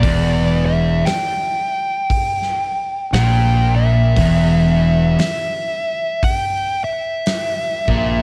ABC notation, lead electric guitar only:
X:1
M:4/4
L:1/8
Q:"Swing" 1/4=58
K:Em
V:1 name="Lead electric guitar"
d e g4 g e- | e2 e2 g e3 |]